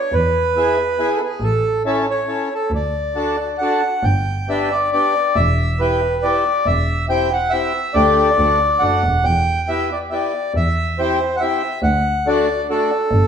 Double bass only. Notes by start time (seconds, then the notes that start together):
0.12 E2
1.40 A1
2.70 D2
4.02 G1
5.36 E1
6.65 E1
7.94 D2
8.37 D2
8.80 F#1
9.03 E1
9.24 E2
10.54 E2
11.82 D2
13.11 G1